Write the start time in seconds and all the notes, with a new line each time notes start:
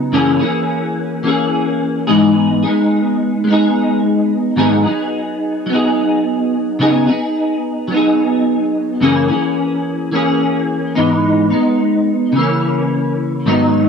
Already playing: C#3 F#3 B3 D#4
0.12 F#2 C#3 E3 A#3 C#4 G#4
0.40 E3 A#3 C#4 G#4
1.23 E3 A#3 C#4
1.27 G#4
2.07 G#2 E3 G#3 B3 D#4 G#4
2.63 B3 D#4 G#4
2.67 G#3
3.44 G#3 B3
3.50 D#4 G#4
4.56 G#2 D#3 F#3 B3 D#4 G#4
4.84 F#3 B3 D#4 G#4
5.66 F#3 B3
5.72 D#4 G#4
6.79 C#3 F#3 B3 D#4 G#4
7.06 D#4 G#4
7.10 B3
7.88 F#3 B3
7.94 D#4 G#4
9.01 F#2 C#3 E3 A#3 C#4 G#4
9.28 E3 A#3 C#4 G#4
10.12 E3 A#3 C#4 G#4
10.95 G#2 E3 G#3 B3 D#4
11.50 B3 D#4
11.55 G#3
12.32 C#3 E3
12.39 A#3 C#4
13.46 G#2 D#3 F#3 B3 D#4